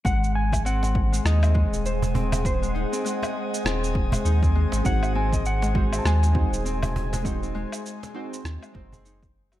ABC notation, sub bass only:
X:1
M:4/4
L:1/16
Q:"Swing 16ths" 1/4=100
K:none
V:1 name="Sub bass" clef=bass
^G,,,8 ^D,,3 ^D,,,4- D,,,- | ^D,,,3 z4 z D,,,4 ^D,,3 ^G,,, | ^G,,,8 ^D,,3 ^D,,,4- D,,,- | ^D,,,3 z4 z ^D,, z ^F,,,6 |]